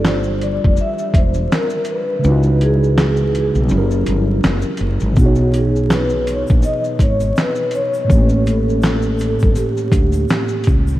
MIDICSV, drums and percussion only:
0, 0, Header, 1, 2, 480
1, 0, Start_track
1, 0, Tempo, 731707
1, 1472, Time_signature, 4, 2, 24, 8
1, 7213, End_track
2, 0, Start_track
2, 0, Title_t, "Drums"
2, 30, Note_on_c, 9, 38, 100
2, 32, Note_on_c, 9, 82, 67
2, 35, Note_on_c, 9, 39, 88
2, 95, Note_off_c, 9, 38, 0
2, 98, Note_off_c, 9, 82, 0
2, 101, Note_off_c, 9, 39, 0
2, 153, Note_on_c, 9, 82, 42
2, 219, Note_off_c, 9, 82, 0
2, 272, Note_on_c, 9, 42, 61
2, 272, Note_on_c, 9, 82, 45
2, 338, Note_off_c, 9, 42, 0
2, 338, Note_off_c, 9, 82, 0
2, 423, Note_on_c, 9, 36, 87
2, 488, Note_off_c, 9, 36, 0
2, 503, Note_on_c, 9, 82, 63
2, 569, Note_off_c, 9, 82, 0
2, 646, Note_on_c, 9, 82, 52
2, 712, Note_off_c, 9, 82, 0
2, 746, Note_on_c, 9, 36, 89
2, 751, Note_on_c, 9, 42, 77
2, 751, Note_on_c, 9, 82, 53
2, 812, Note_off_c, 9, 36, 0
2, 817, Note_off_c, 9, 42, 0
2, 817, Note_off_c, 9, 82, 0
2, 878, Note_on_c, 9, 82, 43
2, 944, Note_off_c, 9, 82, 0
2, 997, Note_on_c, 9, 82, 68
2, 999, Note_on_c, 9, 38, 114
2, 1004, Note_on_c, 9, 39, 81
2, 1062, Note_off_c, 9, 82, 0
2, 1064, Note_off_c, 9, 38, 0
2, 1070, Note_off_c, 9, 39, 0
2, 1114, Note_on_c, 9, 82, 48
2, 1179, Note_off_c, 9, 82, 0
2, 1212, Note_on_c, 9, 42, 67
2, 1212, Note_on_c, 9, 82, 51
2, 1278, Note_off_c, 9, 42, 0
2, 1278, Note_off_c, 9, 82, 0
2, 1467, Note_on_c, 9, 82, 65
2, 1533, Note_off_c, 9, 82, 0
2, 1594, Note_on_c, 9, 82, 38
2, 1660, Note_off_c, 9, 82, 0
2, 1713, Note_on_c, 9, 42, 68
2, 1713, Note_on_c, 9, 82, 46
2, 1778, Note_off_c, 9, 42, 0
2, 1778, Note_off_c, 9, 82, 0
2, 1859, Note_on_c, 9, 82, 36
2, 1925, Note_off_c, 9, 82, 0
2, 1953, Note_on_c, 9, 38, 108
2, 1955, Note_on_c, 9, 82, 66
2, 1958, Note_on_c, 9, 39, 83
2, 2018, Note_off_c, 9, 38, 0
2, 2020, Note_off_c, 9, 82, 0
2, 2024, Note_off_c, 9, 39, 0
2, 2076, Note_on_c, 9, 82, 39
2, 2142, Note_off_c, 9, 82, 0
2, 2196, Note_on_c, 9, 42, 65
2, 2196, Note_on_c, 9, 82, 50
2, 2262, Note_off_c, 9, 42, 0
2, 2262, Note_off_c, 9, 82, 0
2, 2328, Note_on_c, 9, 82, 40
2, 2393, Note_off_c, 9, 82, 0
2, 2419, Note_on_c, 9, 82, 60
2, 2485, Note_off_c, 9, 82, 0
2, 2564, Note_on_c, 9, 82, 50
2, 2630, Note_off_c, 9, 82, 0
2, 2666, Note_on_c, 9, 42, 73
2, 2666, Note_on_c, 9, 82, 50
2, 2732, Note_off_c, 9, 42, 0
2, 2732, Note_off_c, 9, 82, 0
2, 2910, Note_on_c, 9, 82, 64
2, 2912, Note_on_c, 9, 38, 113
2, 2918, Note_on_c, 9, 39, 88
2, 2976, Note_off_c, 9, 82, 0
2, 2978, Note_off_c, 9, 38, 0
2, 2984, Note_off_c, 9, 39, 0
2, 3029, Note_on_c, 9, 82, 53
2, 3094, Note_off_c, 9, 82, 0
2, 3131, Note_on_c, 9, 42, 73
2, 3131, Note_on_c, 9, 82, 50
2, 3196, Note_off_c, 9, 42, 0
2, 3196, Note_off_c, 9, 82, 0
2, 3280, Note_on_c, 9, 82, 44
2, 3345, Note_off_c, 9, 82, 0
2, 3383, Note_on_c, 9, 82, 63
2, 3389, Note_on_c, 9, 36, 118
2, 3402, Note_off_c, 9, 82, 0
2, 3402, Note_on_c, 9, 82, 59
2, 3455, Note_off_c, 9, 36, 0
2, 3467, Note_off_c, 9, 82, 0
2, 3511, Note_on_c, 9, 82, 43
2, 3577, Note_off_c, 9, 82, 0
2, 3631, Note_on_c, 9, 82, 41
2, 3632, Note_off_c, 9, 82, 0
2, 3632, Note_on_c, 9, 42, 65
2, 3632, Note_on_c, 9, 82, 46
2, 3698, Note_off_c, 9, 42, 0
2, 3698, Note_off_c, 9, 82, 0
2, 3778, Note_on_c, 9, 82, 38
2, 3843, Note_off_c, 9, 82, 0
2, 3872, Note_on_c, 9, 38, 113
2, 3874, Note_on_c, 9, 82, 70
2, 3875, Note_off_c, 9, 82, 0
2, 3875, Note_on_c, 9, 82, 57
2, 3878, Note_on_c, 9, 39, 84
2, 3938, Note_off_c, 9, 38, 0
2, 3940, Note_off_c, 9, 82, 0
2, 3943, Note_off_c, 9, 39, 0
2, 3998, Note_on_c, 9, 82, 42
2, 4064, Note_off_c, 9, 82, 0
2, 4114, Note_on_c, 9, 42, 63
2, 4114, Note_on_c, 9, 82, 44
2, 4116, Note_off_c, 9, 82, 0
2, 4116, Note_on_c, 9, 82, 47
2, 4180, Note_off_c, 9, 42, 0
2, 4181, Note_off_c, 9, 82, 0
2, 4246, Note_on_c, 9, 82, 43
2, 4264, Note_on_c, 9, 36, 86
2, 4312, Note_off_c, 9, 82, 0
2, 4329, Note_off_c, 9, 36, 0
2, 4344, Note_on_c, 9, 82, 64
2, 4354, Note_off_c, 9, 82, 0
2, 4354, Note_on_c, 9, 82, 67
2, 4419, Note_off_c, 9, 82, 0
2, 4487, Note_on_c, 9, 82, 50
2, 4553, Note_off_c, 9, 82, 0
2, 4586, Note_on_c, 9, 36, 85
2, 4590, Note_on_c, 9, 82, 51
2, 4594, Note_off_c, 9, 82, 0
2, 4594, Note_on_c, 9, 42, 73
2, 4594, Note_on_c, 9, 82, 51
2, 4652, Note_off_c, 9, 36, 0
2, 4660, Note_off_c, 9, 42, 0
2, 4660, Note_off_c, 9, 82, 0
2, 4724, Note_on_c, 9, 82, 44
2, 4726, Note_off_c, 9, 82, 0
2, 4726, Note_on_c, 9, 82, 45
2, 4792, Note_off_c, 9, 82, 0
2, 4829, Note_on_c, 9, 82, 60
2, 4838, Note_off_c, 9, 82, 0
2, 4838, Note_on_c, 9, 82, 72
2, 4840, Note_on_c, 9, 38, 106
2, 4846, Note_on_c, 9, 39, 86
2, 4904, Note_off_c, 9, 82, 0
2, 4906, Note_off_c, 9, 38, 0
2, 4911, Note_off_c, 9, 39, 0
2, 4955, Note_on_c, 9, 82, 49
2, 5021, Note_off_c, 9, 82, 0
2, 5058, Note_on_c, 9, 42, 66
2, 5058, Note_on_c, 9, 82, 48
2, 5079, Note_off_c, 9, 82, 0
2, 5079, Note_on_c, 9, 82, 43
2, 5124, Note_off_c, 9, 42, 0
2, 5144, Note_off_c, 9, 82, 0
2, 5208, Note_on_c, 9, 82, 51
2, 5274, Note_off_c, 9, 82, 0
2, 5312, Note_on_c, 9, 36, 118
2, 5313, Note_on_c, 9, 82, 62
2, 5321, Note_off_c, 9, 82, 0
2, 5321, Note_on_c, 9, 82, 57
2, 5377, Note_off_c, 9, 36, 0
2, 5387, Note_off_c, 9, 82, 0
2, 5439, Note_on_c, 9, 82, 43
2, 5504, Note_off_c, 9, 82, 0
2, 5553, Note_on_c, 9, 82, 39
2, 5556, Note_off_c, 9, 82, 0
2, 5556, Note_on_c, 9, 42, 63
2, 5556, Note_on_c, 9, 82, 45
2, 5622, Note_off_c, 9, 42, 0
2, 5622, Note_off_c, 9, 82, 0
2, 5703, Note_on_c, 9, 82, 37
2, 5768, Note_off_c, 9, 82, 0
2, 5786, Note_on_c, 9, 82, 57
2, 5795, Note_on_c, 9, 38, 104
2, 5798, Note_off_c, 9, 82, 0
2, 5798, Note_on_c, 9, 82, 67
2, 5801, Note_on_c, 9, 39, 91
2, 5861, Note_off_c, 9, 38, 0
2, 5863, Note_off_c, 9, 82, 0
2, 5867, Note_off_c, 9, 39, 0
2, 5919, Note_on_c, 9, 82, 42
2, 5984, Note_off_c, 9, 82, 0
2, 6028, Note_on_c, 9, 82, 47
2, 6042, Note_off_c, 9, 82, 0
2, 6042, Note_on_c, 9, 42, 63
2, 6042, Note_on_c, 9, 82, 46
2, 6107, Note_off_c, 9, 42, 0
2, 6107, Note_off_c, 9, 82, 0
2, 6163, Note_on_c, 9, 82, 40
2, 6185, Note_on_c, 9, 36, 84
2, 6229, Note_off_c, 9, 82, 0
2, 6250, Note_off_c, 9, 36, 0
2, 6267, Note_on_c, 9, 82, 66
2, 6272, Note_off_c, 9, 82, 0
2, 6272, Note_on_c, 9, 82, 63
2, 6338, Note_off_c, 9, 82, 0
2, 6411, Note_on_c, 9, 82, 50
2, 6476, Note_off_c, 9, 82, 0
2, 6506, Note_on_c, 9, 36, 91
2, 6509, Note_on_c, 9, 82, 48
2, 6512, Note_off_c, 9, 82, 0
2, 6512, Note_on_c, 9, 42, 76
2, 6512, Note_on_c, 9, 82, 55
2, 6571, Note_off_c, 9, 36, 0
2, 6577, Note_off_c, 9, 42, 0
2, 6577, Note_off_c, 9, 82, 0
2, 6640, Note_on_c, 9, 82, 43
2, 6647, Note_off_c, 9, 82, 0
2, 6647, Note_on_c, 9, 82, 48
2, 6712, Note_off_c, 9, 82, 0
2, 6748, Note_on_c, 9, 82, 62
2, 6758, Note_off_c, 9, 82, 0
2, 6758, Note_on_c, 9, 82, 68
2, 6759, Note_on_c, 9, 38, 110
2, 6765, Note_on_c, 9, 39, 94
2, 6823, Note_off_c, 9, 82, 0
2, 6825, Note_off_c, 9, 38, 0
2, 6831, Note_off_c, 9, 39, 0
2, 6877, Note_on_c, 9, 82, 51
2, 6943, Note_off_c, 9, 82, 0
2, 6978, Note_on_c, 9, 42, 67
2, 6978, Note_on_c, 9, 82, 47
2, 7001, Note_on_c, 9, 36, 78
2, 7002, Note_off_c, 9, 82, 0
2, 7002, Note_on_c, 9, 82, 39
2, 7044, Note_off_c, 9, 42, 0
2, 7067, Note_off_c, 9, 36, 0
2, 7068, Note_off_c, 9, 82, 0
2, 7133, Note_on_c, 9, 82, 48
2, 7199, Note_off_c, 9, 82, 0
2, 7213, End_track
0, 0, End_of_file